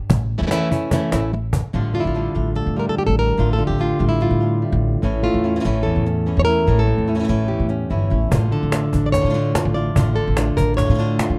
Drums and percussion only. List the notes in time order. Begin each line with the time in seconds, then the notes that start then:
0.10 cajon bass
0.51 cajon slap
0.72 cajon bass
0.91 cajon bass
1.12 cajon slap
1.53 cajon bass
8.32 cajon bass
8.52 cajon slap
8.72 cajon slap
8.93 cajon bass
9.14 cajon bass, cajon slap
9.55 cajon bass, cajon slap
9.96 cajon bass
10.16 cajon slap
10.37 cajon slap
10.57 cajon bass
10.78 cajon bass, cajon slap
11.19 cajon slap